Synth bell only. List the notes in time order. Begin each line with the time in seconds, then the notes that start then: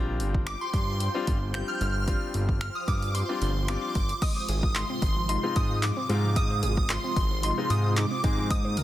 0.47 D6
0.61 C6
1.54 G6
1.68 F6
1.75 G6
1.81 F6
2.61 F6
2.75 D#6
2.88 D6
3.15 C6
3.69 D6
4.22 D#6
4.76 C6
5.29 C6
5.56 D#6
5.83 D6
6.36 D#6
6.90 C6
7.44 C6
7.70 D#6
7.97 D6
8.51 D#6